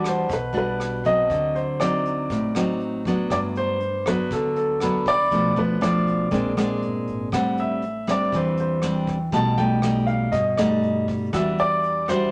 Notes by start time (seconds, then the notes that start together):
Already playing: E2 E3 G3 D4 F#4 F#5 A5
0.04 C5, cross-stick, closed hi-hat
0.29 B1 B2, kick, closed hi-hat
0.33 B4
0.53 G3 D4 F#4, closed hi-hat
0.57 B4
0.80 cross-stick, closed hi-hat
1.05 F#3 C4 D#5, kick, closed hi-hat
1.30 D2 D3, kick, closed hi-hat
1.55 C5, closed hi-hat
1.80 F#3 C4 D#4 D5, cross-stick, closed hi-hat
2.05 closed hi-hat
2.30 A1 A2, kick, closed hi-hat
2.55 F#3 C4 D#4, cross-stick, closed hi-hat
2.80 closed hi-hat
3.05 F#3 B3 D4 D6, kick, closed hi-hat
3.30 G1 G2 D5, kick, cross-stick, closed hi-hat
3.55 C5, closed hi-hat
3.80 closed hi-hat
4.06 F#3 B3 D4 B4, cross-stick, closed hi-hat
4.31 D2 D3 A4, kick, closed hi-hat
4.56 A4, closed hi-hat
4.80 F#3 B3 D4 B5, cross-stick, closed hi-hat
5.06 D5, kick, closed hi-hat
5.31 B1 B2 F3 A3 D4, kick, closed hi-hat
5.56 F3 A3 D4 B4, closed hi-hat
5.81 F3 A3 D4 D5, cross-stick, closed hi-hat
6.07 closed hi-hat
6.31 A#1 A#2 G#3 C4 D4, kick, closed hi-hat
6.57 G#3 C4 D4, cross-stick, closed hi-hat
6.82 G1, closed hi-hat
7.07 G#1, closed hi-hat
7.32 A1 A2 G3 C4 D4 F#5, kick, cross-stick, closed hi-hat
7.57 E5, closed hi-hat
7.82 closed hi-hat
8.07 G3 C4 D4 D5, cross-stick, closed hi-hat
8.32 E2 E3, kick, closed hi-hat
8.36 C5
8.57 C5, closed hi-hat
8.82 G3 C4 D4 G5, cross-stick, closed hi-hat
9.07 kick, closed hi-hat
9.32 B1 B2 G3 A3 D#4 A5, kick, closed hi-hat
9.58 G3 A3 D#4 G5, closed hi-hat
9.82 G3 A3 D#4, cross-stick, closed hi-hat
10.07 F5, closed hi-hat
10.32 G2 B2 D#5, kick, closed hi-hat
10.57 G3 A3 D#4 D#5, cross-stick, closed hi-hat
10.83 closed hi-hat
11.08 kick, closed hi-hat
11.33 E2 E3 G3 D4 F#4 E5, kick, cross-stick, closed hi-hat
11.58 D5, closed hi-hat
11.83 closed hi-hat
12.08 G3 D4 F#4 C5 E5, cross-stick, closed hi-hat